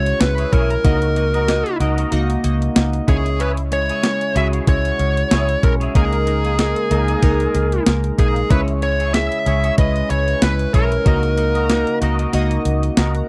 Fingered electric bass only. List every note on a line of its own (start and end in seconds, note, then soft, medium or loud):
0.00 0.12 C#2 medium
0.21 0.44 C#2 medium
0.53 0.76 B1 medium
0.85 1.62 C#2 loud
1.80 2.03 C#2 medium
2.12 2.35 C#2 loud
2.44 2.67 C#2 loud
2.76 2.99 C#2 loud
3.08 3.90 C#2 medium
4.36 4.59 C#2 medium
4.67 4.90 C#2 loud
4.99 5.22 C#2 medium
5.31 5.54 C#2 medium
5.63 5.86 B1 medium
5.95 6.73 C#2 loud
6.91 7.14 C#2 medium
7.23 7.46 C#2 medium
7.55 7.78 C#2 medium
7.87 8.10 C#2 medium
8.18 8.42 B1 medium
8.50 9.28 C#2 loud
9.46 9.69 C#2 medium
9.78 10.01 C#2 medium
10.10 10.33 C#2 medium
10.42 10.65 C#2 medium
10.74 10.97 B1 medium
11.06 11.83 C#2 loud
12.02 12.25 C#2 medium
12.34 12.57 C#2 loud
12.65 12.88 C#2 loud
12.97 13.20 C#2 loud